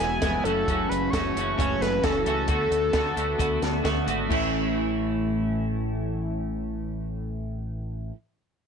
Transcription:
Already playing: clean electric guitar E2 B2 E3 G#3 B3 E4, analog synth lead G#5
0.00 fingered electric bass E1
0.22 fingered electric bass F1, clean electric guitar E2 B2 E3 G#3 B3 E4, kick, snare, closed hi-hat
0.44 fingered electric bass F#1, clean electric guitar F#2 C#3 E3 A3 C#4 F#4, analog synth lead A4, closed hi-hat
0.67 fingered electric bass F#1, clean electric guitar F#2 C#3 E3 A3 C#4 F#4, kick, closed hi-hat
0.89 fingered electric bass F#1, analog synth lead B4, closed hi-hat
1.10 fingered electric bass F#1, clean electric guitar F#2 C#3, analog synth lead C#5, kick, snare, closed hi-hat
1.14 clean electric guitar E3 A3 C#4 F#4
1.35 fingered electric bass F#1, clean electric guitar F#2 C#3 E3 A3 C#4 F#4, closed hi-hat
1.57 fingered electric bass F#1, clean electric guitar F#2 C#3 E3 A3 C#4 F#4, analog synth lead C#5, kick, closed hi-hat
1.80 fingered electric bass F#1, analog synth lead B4, snare, closed hi-hat
2.02 fingered electric bass F#1, clean electric guitar F#2 C#3 E3 A3 C#4 F#4, analog synth lead A4, kick, snare, closed hi-hat
2.25 fingered electric bass C#2, clean electric guitar F#2 C#3 E3 A3 C#4 F#4, analog synth lead A4, closed hi-hat
2.48 fingered electric bass D2, clean electric guitar D3 A3 B3 F#4, analog synth lead A4, kick, closed hi-hat
2.71 fingered electric bass D2, closed hi-hat
2.93 fingered electric bass D2, clean electric guitar D3 A3 B3 F#4, kick, snare, closed hi-hat
3.16 fingered electric bass D2, clean electric guitar D3 A3 B3 F#4, closed hi-hat
3.38 fingered electric bass D2, clean electric guitar D3 A3 B3 F#4, kick, closed hi-hat
3.62 fingered electric bass D2, snare, closed hi-hat
3.83 fingered electric bass D2, clean electric guitar D3 A3 B3 F#4, kick, snare, closed hi-hat
4.06 fingered electric bass G#1, clean electric guitar D3 A3 B3 F#4, closed hi-hat
4.28 fingered electric bass A1, clean electric guitar A2 E3 A3 C#4 E4, kick, crash

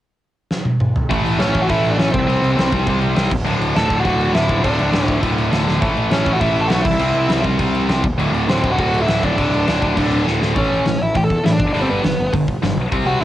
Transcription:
0.51 snare
0.65 high tom
0.80 mid tom
0.96 floor tom
1.09 picked electric bass A1, distorted electric guitar A2 E3 A3, kick, crash
1.25 picked electric bass A1, crash
1.39 picked electric bass A1, distorted electric guitar A2 E3 A3, lead electric guitar C#4 C#5, snare, crash
1.54 picked electric bass A1, kick, crash
1.62 lead electric guitar F#4 F#5
1.69 picked electric bass A1, distorted electric guitar A2 E3 A3, lead electric guitar E4 E5, kick, crash
1.85 crash
1.90 lead electric guitar D4 D5
1.99 picked electric bass A1, distorted electric guitar A2 E3 A3, lead electric guitar C#4 C#5, snare, crash
2.12 picked electric bass C2, lead electric guitar C4 C5, kick
2.27 picked electric bass C2, distorted electric guitar C3 G3 C4, crash
2.42 picked electric bass C2, crash
2.56 picked electric bass C2, distorted electric guitar C3 G3 C4, snare, crash
2.72 picked electric bass C2, kick, crash
2.86 picked electric bass C2, distorted electric guitar C3 G3 C4, kick, crash
3.01 crash
3.15 picked electric bass C2, distorted electric guitar C3 G3 C4, snare, crash
3.31 picked electric bass D1, kick, crash
3.44 picked electric bass D1, distorted electric guitar D2 A2 D3, crash
3.59 picked electric bass D1, crash
3.75 picked electric bass D1, distorted electric guitar D2 A2 D3, lead electric guitar A4 A5, snare, crash
3.90 picked electric bass D1, kick, crash
3.99 lead electric guitar F#4 F#5
4.04 picked electric bass D1, distorted electric guitar D2 A2 D3, lead electric guitar F#4 F#5, kick, crash
4.20 crash
4.33 picked electric bass D1, distorted electric guitar D2 A2 D3, lead electric guitar E4 E5, snare, crash
4.49 picked electric bass D1, kick, crash
4.62 picked electric bass D1, distorted electric guitar D2 A2 D3, lead electric guitar D4 D5, kick, crash
4.79 picked electric bass D1, crash
4.92 picked electric bass D1, distorted electric guitar D2 A2 D3, snare, crash
5.06 picked electric bass D1, lead electric guitar C5, kick, crash
5.20 picked electric bass D1, distorted electric guitar D2 A2 D3, kick, crash
5.38 crash
5.51 picked electric bass D1, distorted electric guitar D2 A2 D3, snare, crash
5.68 picked electric bass D1, snare
5.81 picked electric bass A1, distorted electric guitar A2 E3 A3, kick, crash
5.97 picked electric bass A1, crash
6.10 picked electric bass A1, distorted electric guitar A2 E3 A3, lead electric guitar C#4 C#5, snare, crash
6.26 picked electric bass A1, kick, crash
6.33 lead electric guitar F#4 F#5
6.40 picked electric bass A1, distorted electric guitar A2 E3 A3, lead electric guitar E4 E5, kick, crash
6.56 crash
6.61 lead electric guitar A4 A5
6.68 picked electric bass B1, distorted electric guitar A2 E3 A3, lead electric guitar F#4 F#5, snare, crash
6.82 lead electric guitar E4 E5, kick, crash
6.86 picked electric bass C2
6.99 picked electric bass C2, distorted electric guitar C3 G3 C4, crash
7.14 picked electric bass C2, crash
7.29 picked electric bass C2, distorted electric guitar C3 G3 C4, snare, crash
7.45 picked electric bass C2, kick, crash
7.58 picked electric bass C2, distorted electric guitar C3 G3 C4, kick, crash
7.75 crash
7.89 picked electric bass C2, distorted electric guitar C3 G3 C4, snare, crash
8.04 picked electric bass D1, kick, crash
8.18 picked electric bass D1, distorted electric guitar D2 A2 D3, crash
8.32 picked electric bass D1, crash
8.48 picked electric bass D1, distorted electric guitar D2 A2 D3, lead electric guitar C4 C5, snare, crash
8.63 picked electric bass D1, kick, crash
8.71 lead electric guitar F#4 F#5
8.77 picked electric bass D1, distorted electric guitar D2 A2 D3, lead electric guitar F#4 F#5, kick, crash
8.94 crash
9.02 lead electric guitar E4 E5
9.07 picked electric bass D1, distorted electric guitar D2 A2 D3, snare, crash
9.23 picked electric bass D1, lead electric guitar D4 D5, kick, crash
9.37 picked electric bass D1, distorted electric guitar D2 A2 D3, kick, crash
9.53 picked electric bass D1, crash
9.66 picked electric bass D1, distorted electric guitar D2 A2 D3, snare, crash
9.82 picked electric bass D1, kick, crash
9.96 picked electric bass D1, distorted electric guitar D2 A2 D3, kick, crash
10.11 crash
10.24 picked electric bass D1, distorted electric guitar D2 A2 D3, snare
10.42 picked electric bass D1, snare
10.54 picked electric bass A1, distorted electric guitar A2 E3 A3, lead electric guitar C#4, kick, open hi-hat
10.58 lead electric guitar C#5
10.72 picked electric bass A1
10.85 picked electric bass A1, distorted electric guitar A2 E3, snare, open hi-hat
11.01 picked electric bass A1, lead electric guitar E4 E5
11.15 picked electric bass A1, distorted electric guitar A2 E3, lead electric guitar G4 G5, kick, open hi-hat
11.24 lead electric guitar A4 A5
11.30 picked electric bass E2, kick
11.44 distorted electric guitar A2 E3, picked electric bass A2, lead electric guitar E4 E5, snare, open hi-hat
11.51 lead electric guitar D4 D5
11.60 picked electric bass G1, kick
11.73 picked electric bass G1, distorted electric guitar G2 D3 G3, lead electric guitar D4 D5, open hi-hat
11.81 lead electric guitar C4 C5
11.90 picked electric bass G1, lead electric guitar B3 B4
12.03 picked electric bass G1, distorted electric guitar G2 D3, snare, open hi-hat
12.20 picked electric bass G1
12.33 picked electric bass G1, distorted electric guitar G2 D3, kick, open hi-hat
12.48 kick
12.63 picked electric bass G1, distorted electric guitar G2 D3, snare, open hi-hat
12.77 picked electric bass B1
12.92 picked electric bass C2, distorted electric guitar C3 G3 C4, kick, open hi-hat
13.06 picked electric bass C2, lead electric guitar F#4 F#5
13.21 picked electric bass C2, lead electric guitar E5

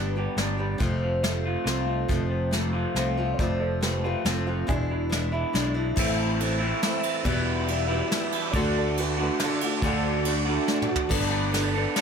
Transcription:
Already playing: fingered electric bass G1, clean electric guitar G2 G3 D4, steel-string acoustic guitar G3 B3 D4 G4
0.16 steel-string acoustic guitar G3 B3 D4 G4
0.36 fingered electric bass G1, steel-string acoustic guitar G3 B3 D4 G4, snare, closed hi-hat
0.57 steel-string acoustic guitar G3 B3 D4 G4
0.78 fingered electric bass F1, steel-string acoustic guitar F2 C3 F3 A3 C4 F4, kick, closed hi-hat
1.03 clean electric guitar F3
1.23 steel-string acoustic guitar F3 A3 C4 F4, snare, closed hi-hat
1.46 clean electric guitar F4
1.65 fingered electric bass C2, steel-string acoustic guitar F3 A3 C4 F4, snare, closed hi-hat
1.88 clean electric guitar F3
2.08 fingered electric bass F1, steel-string acoustic guitar F2 C3 F3 A3 C4 F4, kick, closed hi-hat
2.30 clean electric guitar F3
2.51 steel-string acoustic guitar F3 A3 C4 F4, snare, closed hi-hat
2.73 clean electric guitar F4
2.95 fingered electric bass C2, steel-string acoustic guitar F3 A3 C4 F4, snare, closed hi-hat
3.17 steel-string acoustic guitar F3 A3 C4 F4
3.34 upright piano C#5
3.38 fingered electric bass F1, steel-string acoustic guitar F2 C3 F3 A3 C4 F4, upright piano A4 D5, kick, closed hi-hat
3.60 clean electric guitar F3, upright piano A4 D5
3.81 steel-string acoustic guitar F3 A3 C4 F4, upright piano G4 B4, snare, closed hi-hat
4.04 steel-string acoustic guitar F3 A3 C4 F4, upright piano G4 B4
4.25 fingered electric bass F1, steel-string acoustic guitar F3 A3 C4 F4, upright piano F4 A4, snare, closed hi-hat
4.47 steel-string acoustic guitar F3 A3 C4 F4, upright piano F4 A4
4.67 fingered electric bass E1, steel-string acoustic guitar E2 B2 E3 G#3 D4 E4, upright piano E4 G#4, kick, closed hi-hat
4.91 clean electric guitar E3
5.09 steel-string acoustic guitar E3 G#3 D4 E4, snare, closed hi-hat
5.32 steel-string acoustic guitar E3 G#3 D4 E4
5.53 fingered electric bass B1, steel-string acoustic guitar E3 G#3 D4 E4, snare, closed hi-hat
5.74 steel-string acoustic guitar E3 G#3 D4 E4
5.96 fingered electric bass A1, steel-string acoustic guitar A2 E3 A3 C4 E4, tonewheel organ C5 E5 A5 E6, kick, crash
6.40 steel-string acoustic guitar E3 A3 C4 E4, ride
6.61 clean electric guitar A2 E3, steel-string acoustic guitar A3 C4 E4
6.82 steel-string acoustic guitar E3 A3 C4 E4, snare, ride
7.03 ride
7.24 fingered electric bass E1, steel-string acoustic guitar E2 B2 E3 G3 B3 E4, tonewheel organ B4 G5, kick, ride
7.68 steel-string acoustic guitar E3 G3 B3 E4, ride
7.89 clean electric guitar E2 B2 E3, steel-string acoustic guitar G3 B3 E4
7.94 steel-string acoustic guitar E3
8.11 steel-string acoustic guitar E3 G3 B3 E4, snare, ride
8.32 ride
8.51 fingered electric bass D2, steel-string acoustic guitar D3, tonewheel organ F#4 A4 D5 D6, upright piano C#5 D5, kick, ride
8.55 steel-string acoustic guitar A3 D4 F#4, upright piano A4
8.78 upright piano A4 D5
8.97 steel-string acoustic guitar D3 A3 D4 F#4, upright piano F#4 B4, ride
9.20 clean electric guitar D3, steel-string acoustic guitar A3 D4 F#4, upright piano F#4 B4
9.39 steel-string acoustic guitar D3 A3 D4 F#4, snare, ride
9.43 upright piano F4 A4
9.61 steel-string acoustic guitar A3 D4 F#4, upright piano F4 A4, ride
9.82 fingered electric bass D2, steel-string acoustic guitar D3 A3 D4 F#4, upright piano A4 F5, kick, ride
10.25 steel-string acoustic guitar D3 A3 D4 F#4, ride
10.46 clean electric guitar D3, steel-string acoustic guitar A3 D4 F#4
10.67 steel-string acoustic guitar D3 A3 D4 F#4, snare
10.82 mid tom
10.87 steel-string acoustic guitar A3 D4 F#4
10.96 floor tom
11.09 fingered electric bass G1, steel-string acoustic guitar G3 B3 D4 A4, tonewheel organ D5 G5, kick, crash
11.13 tonewheel organ A4 B5
11.30 clean electric guitar B3 D4 A4
11.51 steel-string acoustic guitar G3 B3 D4 A4, snare, ride
11.75 steel-string acoustic guitar B3 D4 A4
11.96 steel-string acoustic guitar G3 B3 D4, clean electric guitar A4, snare, ride

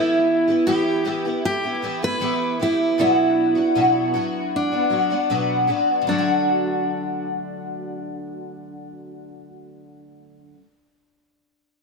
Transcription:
Already playing: twelve-string acoustic guitar E3 B3 E4 G4, steel-string acoustic guitar E4
0.48 twelve-string acoustic guitar B3 E4 G4
0.67 twelve-string acoustic guitar E3 B3 E4 G4, steel-string acoustic guitar G4
1.05 twelve-string acoustic guitar E3 B3 E4 G4
1.25 twelve-string acoustic guitar B3 E4 G4
1.45 steel-string acoustic guitar G4
1.63 twelve-string acoustic guitar B3 E4 G4
1.82 twelve-string acoustic guitar E3 B3 E4 G4
2.02 twelve-string acoustic guitar B3 E4 G4, steel-string acoustic guitar B4
2.20 twelve-string acoustic guitar E3 B3 E4 G4
2.59 twelve-string acoustic guitar E3 B3 E4 G4, steel-string acoustic guitar E4
2.98 twelve-string acoustic guitar B2 F#3 B3 D4 F#4, steel-string acoustic guitar E4
3.55 twelve-string acoustic guitar B3 D4 F#4
3.75 twelve-string acoustic guitar B2 F#3 B3 D4 F#4
4.14 twelve-string acoustic guitar F#3 B3 D4 F#4
4.56 steel-string acoustic guitar D4
4.72 twelve-string acoustic guitar B3 D4 F#4
4.90 twelve-string acoustic guitar F#3 B3 D4 F#4
5.10 twelve-string acoustic guitar B3 D4 F#4
5.30 twelve-string acoustic guitar B2 F#3 B3 D4 F#4
5.67 twelve-string acoustic guitar F#3 B3 D4 F#4
6.01 twelve-string acoustic guitar D3
6.07 twelve-string acoustic guitar F#3 A3, steel-string acoustic guitar D4
6.18 twelve-string acoustic guitar F#4

